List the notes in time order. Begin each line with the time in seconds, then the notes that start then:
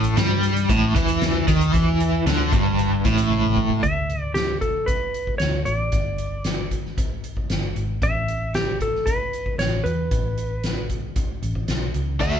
Already playing: A1 A2
0.04 closed hi-hat
0.16 G2 G3, snare, closed hi-hat
0.43 closed hi-hat
0.57 closed hi-hat
0.69 A1 A2, kick, closed hi-hat
0.95 E2 E3, kick, closed hi-hat
1.08 closed hi-hat
1.21 snare, closed hi-hat
1.48 D#2 D#3, kick, closed hi-hat
1.61 closed hi-hat
1.73 E2 E3, kick, closed hi-hat
2.00 closed hi-hat
2.26 D2 D3, snare, closed hi-hat
2.53 G1 G2, kick, closed hi-hat
2.79 closed hi-hat
3.05 A1 A2, kick, closed hi-hat
3.18 closed hi-hat
3.31 high tom
3.44 mid tom
3.57 kick
3.70 kick
3.83 D2 E5, kick, closed hi-hat
4.10 closed hi-hat
4.34 G4, snare, closed hi-hat
4.61 A4, kick, closed hi-hat
4.86 B4, kick, closed hi-hat
5.14 closed hi-hat
5.27 kick
5.38 D2 C#5, snare, closed hi-hat
5.65 A1 D5, closed hi-hat
5.92 G1, kick, closed hi-hat
6.18 closed hi-hat
6.44 snare, closed hi-hat
6.71 kick, closed hi-hat
6.86 snare
6.98 kick, closed hi-hat
7.24 closed hi-hat
7.37 kick
7.50 G1, snare, closed hi-hat
7.76 G#1, closed hi-hat
8.02 A1 E5, kick, closed hi-hat
8.28 closed hi-hat
8.54 G4, snare, closed hi-hat
8.81 A4, kick, closed hi-hat
8.95 snare
9.06 B4, kick, closed hi-hat
9.33 closed hi-hat
9.46 kick
9.58 A1 C#5, snare, closed hi-hat
9.84 E2 B4, closed hi-hat
10.11 A1, kick, closed hi-hat
10.38 closed hi-hat
10.64 snare, closed hi-hat
10.90 kick, closed hi-hat
11.16 kick, closed hi-hat
11.42 A1, closed hi-hat
11.55 kick
11.68 B1, snare, closed hi-hat
11.94 C#2, closed hi-hat
12.20 D2 D3 A3 D4 F#4 E5, kick, closed hi-hat